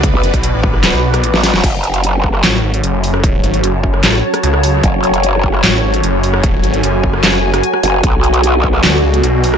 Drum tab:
CC |----------------|x---------------|----------------|----------------|
HH |x-xxx---x--xx-o-|x-xxx---x--xx-o-|x-xxx---x--xx-o-|x-xxx---x--xx-o-|
CP |--------x-------|--------x-------|--------x-------|--------x-------|
SD |-------ror-r-ooo|-------ro------r|-------ror-r-r--|-------ro------r|
BD |o--o--o---------|o-----o---------|o-----o---------|o-----o---------|

CC |----------------|----------------|
HH |x-xxx---x--xx-o-|x-xxx---x--xx-o-|
CP |--------x-------|--------x-------|
SD |-------ror-r-r--|-------ro------r|
BD |o-----o---------|o-----o---------|